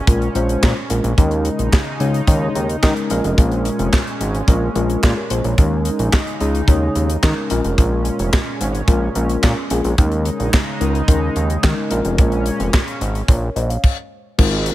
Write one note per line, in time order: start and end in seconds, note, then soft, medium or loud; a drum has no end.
0.00 1.15 A#2 medium
0.00 9.94 G#3 medium
0.00 1.15 C#4 medium
0.07 0.29 A#1 loud
0.07 0.27 G#3 medium
0.07 0.27 C#4 medium
0.07 0.27 F4 medium
0.07 0.27 A#4 medium
0.07 kick loud
0.07 closed hi-hat loud
0.22 closed hi-hat soft
0.35 0.57 A#1 medium
0.35 0.74 G#3 loud
0.35 0.74 C#4 medium
0.35 0.74 F4 medium
0.35 0.74 C5 loud
0.35 closed hi-hat medium
0.49 closed hi-hat medium
0.63 0.74 A#2 loud
0.63 kick loud
0.63 snare loud
0.63 clap medium
0.90 1.01 A#1 medium
0.90 1.10 G#3 medium
0.90 1.10 C#4 medium
0.90 1.10 F4 medium
0.90 1.10 A#4 medium
0.90 closed hi-hat medium
1.04 1.15 A#1 medium
1.04 closed hi-hat soft
1.17 1.50 D#2 loud
1.17 3.08 C#3 medium
1.17 1.76 G#3 medium
1.17 1.76 C#4 medium
1.17 3.08 D#4 medium
1.17 1.76 D#4 medium
1.17 1.77 A#4 medium
1.17 kick loud
1.17 closed hi-hat medium
1.31 closed hi-hat soft
1.45 closed hi-hat medium
1.59 1.70 A#1 medium
1.59 closed hi-hat medium
1.73 kick loud
1.73 snare loud
1.73 clap medium
2.00 2.21 C#2 medium
2.00 2.20 G#3 medium
2.00 2.20 C#4 medium
2.00 2.20 D#4 medium
2.00 2.20 C#5 loud
2.00 closed hi-hat medium
2.14 closed hi-hat soft
2.27 2.49 D#2 loud
2.27 2.67 G#3 medium
2.27 2.67 C#4 medium
2.27 2.67 D#4 medium
2.27 2.67 C#5 medium
2.27 kick loud
2.27 closed hi-hat medium
2.55 2.77 D#2 medium
2.55 closed hi-hat medium
2.69 closed hi-hat medium
2.82 2.94 D#3 loud
2.82 3.09 G#3 medium
2.82 3.09 C#4 medium
2.82 3.10 D#4 medium
2.82 3.10 A#4 loud
2.82 kick loud
2.82 snare loud
2.82 clap medium
2.97 closed hi-hat soft
3.10 3.21 A#1 medium
3.10 5.55 A#2 medium
3.10 3.98 G#3 medium
3.10 5.55 C#4 medium
3.10 3.98 C#4 medium
3.10 3.99 F4 medium
3.10 3.99 A#4 loud
3.10 closed hi-hat medium
3.24 3.35 F1 medium
3.24 closed hi-hat soft
3.38 3.70 A#1 loud
3.38 kick loud
3.38 closed hi-hat medium
3.52 closed hi-hat soft
3.65 closed hi-hat medium
3.79 3.90 F1 medium
3.79 closed hi-hat medium
3.93 kick loud
3.93 snare loud
3.93 clap loud
4.07 closed hi-hat soft
4.21 4.42 G#1 medium
4.21 closed hi-hat medium
4.35 closed hi-hat soft
4.48 4.69 A#1 medium
4.48 4.67 G#3 medium
4.48 4.68 C#4 medium
4.48 4.68 F4 medium
4.48 4.68 A#4 medium
4.48 kick loud
4.48 closed hi-hat medium
4.75 4.97 A#1 medium
4.75 5.14 G#3 medium
4.75 5.15 C#4 medium
4.75 5.02 F4 medium
4.75 5.03 A#4 loud
4.75 closed hi-hat medium
4.90 closed hi-hat medium
5.03 5.14 A#2 loud
5.03 5.16 F4 medium
5.03 5.16 G#4 medium
5.03 kick loud
5.03 snare loud
5.03 clap loud
5.17 5.30 G4 medium
5.17 5.30 A#4 medium
5.30 5.41 A#1 medium
5.30 5.44 G#4 medium
5.30 5.44 C5 medium
5.30 closed hi-hat medium
5.44 5.55 A#1 medium
5.44 5.58 A#4 medium
5.44 5.70 C#5 medium
5.44 closed hi-hat soft
5.58 5.90 D#2 loud
5.58 7.49 C#3 medium
5.58 6.17 G#3 medium
5.58 6.17 C#4 medium
5.58 7.49 D#4 medium
5.58 6.17 D#4 medium
5.58 6.17 A#4 medium
5.58 kick loud
5.58 closed hi-hat medium
5.85 closed hi-hat medium
5.99 6.10 A#1 medium
5.99 closed hi-hat medium
6.13 kick loud
6.13 snare loud
6.13 clap loud
6.27 closed hi-hat soft
6.40 6.62 C#2 medium
6.40 6.60 G#3 medium
6.40 6.60 C#4 medium
6.40 6.60 D#4 medium
6.40 6.60 G#4 medium
6.40 closed hi-hat medium
6.55 closed hi-hat soft
6.68 6.89 D#2 loud
6.68 7.07 G#3 medium
6.68 7.07 C#4 medium
6.68 7.07 D#4 medium
6.68 7.07 C#5 loud
6.68 kick loud
6.68 closed hi-hat medium
6.95 7.17 D#2 medium
6.95 closed hi-hat medium
7.10 closed hi-hat medium
7.23 7.34 D#3 loud
7.23 7.49 G#3 medium
7.23 7.50 C#4 medium
7.23 7.51 D#4 medium
7.23 7.50 A#4 medium
7.23 kick loud
7.23 snare loud
7.23 clap loud
7.50 7.61 A#1 medium
7.50 9.96 A#2 medium
7.50 8.39 G#3 medium
7.50 9.96 C#4 medium
7.50 8.39 C#4 medium
7.50 8.39 F4 medium
7.50 8.39 A#4 loud
7.50 closed hi-hat medium
7.64 7.75 F1 medium
7.64 closed hi-hat medium
7.78 8.10 A#1 loud
7.78 kick loud
7.78 closed hi-hat medium
8.05 closed hi-hat medium
8.19 8.30 F1 medium
8.19 closed hi-hat medium
8.33 kick loud
8.33 snare loud
8.33 clap medium
8.61 8.82 G#1 medium
8.61 closed hi-hat medium
8.75 closed hi-hat soft
8.88 9.09 A#1 loud
8.88 9.08 G#3 medium
8.88 9.08 C#4 medium
8.88 9.08 F4 medium
8.88 9.08 A#4 medium
8.88 kick loud
8.88 closed hi-hat medium
9.15 9.37 A#1 medium
9.15 9.55 G#3 medium
9.15 9.55 C#4 medium
9.15 9.55 F4 medium
9.15 9.55 A#4 loud
9.15 closed hi-hat medium
9.29 closed hi-hat soft
9.43 9.54 A#2 loud
9.43 kick loud
9.43 snare loud
9.43 clap medium
9.70 9.81 A#1 medium
9.70 9.90 G#3 medium
9.70 9.90 C#4 medium
9.70 9.90 F4 medium
9.70 9.91 G#4 medium
9.70 closed hi-hat loud
9.84 9.95 A#1 medium
9.84 closed hi-hat soft
9.98 10.30 D#2 loud
9.98 11.89 C#3 medium
9.98 10.05 G3 medium
9.98 13.80 G#3 medium
9.98 10.57 C#4 medium
9.98 11.89 D#4 medium
9.98 10.57 D#4 medium
9.98 10.57 A#4 medium
9.98 kick loud
9.98 closed hi-hat medium
10.04 10.60 G#3 medium
10.12 closed hi-hat soft
10.25 closed hi-hat medium
10.40 10.50 A#1 medium
10.40 closed hi-hat medium
10.53 kick loud
10.53 snare loud
10.53 clap loud
10.80 11.02 C#2 medium
10.80 11.00 G#3 medium
10.80 11.00 C#4 medium
10.80 11.00 D#4 medium
10.80 11.01 A#4 medium
10.80 closed hi-hat medium
10.95 closed hi-hat soft
11.08 11.30 D#2 loud
11.08 11.47 G#3 medium
11.08 11.47 C#4 medium
11.08 11.48 D#4 medium
11.08 11.48 A#4 loud
11.08 kick loud
11.08 closed hi-hat loud
11.36 11.57 D#2 medium
11.36 closed hi-hat medium
11.50 closed hi-hat medium
11.63 11.74 D#3 loud
11.63 11.89 G#3 medium
11.63 11.89 C#4 medium
11.63 11.91 D#4 medium
11.63 11.90 A#4 loud
11.63 kick loud
11.63 snare loud
11.63 clap loud
11.90 12.02 A#1 medium
11.90 13.82 A#2 medium
11.90 12.79 G#3 medium
11.90 12.79 C#4 medium
11.90 13.82 C#4 medium
11.90 12.79 F4 medium
11.90 12.79 A#4 loud
11.90 closed hi-hat medium
12.05 12.20 F1 medium
12.05 closed hi-hat soft
12.18 12.51 A#1 loud
12.18 kick loud
12.18 closed hi-hat medium
12.32 closed hi-hat soft
12.46 closed hi-hat medium
12.60 12.70 F1 medium
12.60 closed hi-hat medium
12.74 kick loud
12.74 snare loud
12.74 clap loud
12.88 closed hi-hat soft
13.01 13.23 G#1 loud
13.01 closed hi-hat medium
13.15 closed hi-hat soft
13.28 13.50 A#1 loud
13.28 13.55 A#4 medium
13.28 13.55 C#5 medium
13.28 kick loud
13.28 closed hi-hat medium
13.56 13.77 A#1 medium
13.56 13.69 C5 medium
13.56 13.69 D#5 medium
13.56 closed hi-hat medium
13.70 13.96 C#5 soft
13.70 13.96 F5 medium
13.70 closed hi-hat medium
13.84 kick loud
13.84 crash medium
14.38 14.71 G#1 loud
14.38 14.75 C3 medium
14.38 14.75 G#3 medium
14.38 14.75 A#3 medium
14.38 14.75 C4 medium
14.38 14.75 D#4 medium
14.38 14.75 F4 loud
14.38 14.75 F4 medium
14.38 14.75 A#4 loud
14.38 kick loud
14.38 crash loud
14.66 closed hi-hat medium